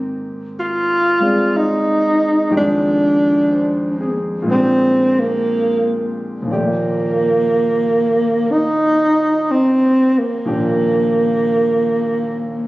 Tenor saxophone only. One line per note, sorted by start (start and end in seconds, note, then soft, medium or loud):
0.00 0.22 C4 loud
0.60 1.59 F4 medium
1.57 2.55 D#4 medium
2.57 4.18 D4 medium
4.51 5.21 C4 medium
5.19 6.18 A#3 medium
6.54 8.53 A#3 medium
8.51 9.52 D#4 loud
9.51 10.20 C4 medium
10.18 12.68 A#3 medium